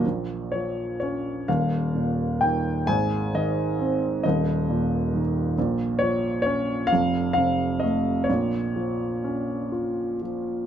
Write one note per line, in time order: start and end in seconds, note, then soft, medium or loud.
0.05 1.44 A#1 medium
0.05 1.44 A#2 medium
0.52 1.46 F3 soft
0.52 0.97 C#5 medium
1.00 1.47 C#4 soft
1.00 1.49 C#5 medium
1.48 2.83 D#1 medium
1.48 2.83 D#2 medium
1.48 2.44 F5 medium
1.95 2.84 A#2 soft
2.41 2.86 D#3 medium
2.41 2.88 G5 medium
2.87 4.21 G#1 medium
2.87 4.21 G#2 medium
2.87 3.30 G#5 loud
3.34 4.22 D#3 soft
3.34 4.22 D#5 medium
3.79 4.23 C4 medium
4.23 5.53 D#1 medium
4.23 5.54 D#2 medium
4.23 5.20 D#5 medium
4.70 5.55 A#2 medium
5.14 5.56 D#3 medium
5.58 6.87 A#1 medium
5.58 6.87 A#2 medium
5.99 6.89 F3 soft
5.99 6.41 C#5 medium
6.42 6.91 C#5 medium
6.46 6.90 C#4 medium
6.87 7.31 F5 loud
6.92 8.25 F1 medium
6.92 8.25 F2 medium
7.33 7.82 F5 medium
7.38 8.26 C3 soft
7.80 8.28 A3 medium
7.80 8.29 D#5 medium
8.24 10.15 C#5 medium
8.29 10.66 A#1 medium
8.29 10.66 A#2 medium
8.76 10.20 F3 soft
9.24 10.66 C#4 soft
9.72 10.66 F4 medium
10.22 10.66 F3 soft